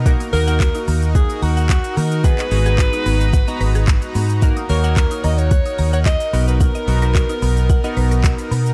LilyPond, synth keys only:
\new Staff \with { instrumentName = "Synth keys" } { \time 4/4 \key ees \minor \tempo 4 = 110 <bes ees' ges' bes'>16 r16 <bes ees' ges' bes'>16 <bes ees' ges' bes'>4. r4. r16 | <ces' ees' ges' aes'>16 r16 <ces' ees' ges' aes'>16 <ces' ees' ges' aes'>4 r8 <ces' ees' ges' bes''>4~ <ces' ees' ges' bes''>16 r8 | <bes ees' ges' bes'>16 r16 <bes ees' ges' des''>16 <bes ees' ges' des''>4. r4 r16 <b dis' fis' ais'>8~ | <b dis' fis' ais'>16 r16 <b dis' fis' ais'>16 <b dis' fis' ais'>4 r8 <b dis' fis' ais'>4~ <b dis' fis' ais'>16 r8 | }